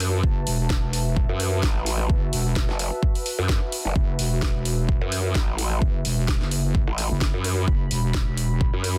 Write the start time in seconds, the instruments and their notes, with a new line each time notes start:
Already playing: wobble bass F#2, ambient pad F#4 B4 E5 A5
0.00 open hi-hat
0.23 wobble bass F#1, kick
0.47 wobble bass E1, open hi-hat
0.70 kick, snare
0.83 wobble bass E1
0.93 open hi-hat
1.17 kick
1.29 wobble bass F#2
1.40 open hi-hat
1.63 wobble bass A1, kick, snare
1.86 open hi-hat
2.10 wobble bass F#1, kick
2.33 wobble bass E1, open hi-hat
2.56 kick, snare
2.69 wobble bass F#1, snare
2.79 open hi-hat
3.03 kick
3.15 open hi-hat
3.26 open hi-hat
3.39 wobble bass F#2
3.49 kick, snare
3.72 open hi-hat
3.85 wobble bass F#1
3.96 wobble bass F#1, kick
4.19 wobble bass E1, open hi-hat
4.42 kick, snare
4.55 wobble bass E1
4.65 open hi-hat
4.89 kick
5.01 wobble bass F#2
5.12 open hi-hat
5.35 wobble bass A1, kick, snare
5.58 open hi-hat
5.82 wobble bass F#1, kick
6.05 wobble bass E1, ambient pad B5, open hi-hat
6.28 kick, snare
6.41 wobble bass F#1, snare
6.51 open hi-hat
6.75 kick
6.87 wobble bass A1
6.98 open hi-hat
7.11 wobble bass F#1
7.21 kick, snare
7.34 wobble bass F#2
7.44 open hi-hat
7.68 wobble bass F#1, kick
7.91 wobble bass E1, open hi-hat
8.14 kick, snare
8.27 wobble bass E1
8.37 open hi-hat
8.61 kick
8.73 wobble bass F#2
8.84 open hi-hat